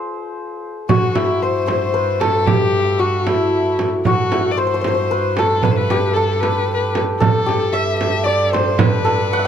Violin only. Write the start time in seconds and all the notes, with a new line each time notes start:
0.90 F#4
1.17 E4
1.42 C5
1.68 C5
2.20 A4
2.47 G4
3.00 F#4
3.27 E4
4.06 F#4
4.51 D5
4.59 C5
5.38 A4
5.62 B4
5.71 C5
5.76 B4
6.13 A4
6.40 B4
6.74 B4
7.19 A4
7.73 E5
7.99 E5
8.24 D5
8.51 C5
8.78 B4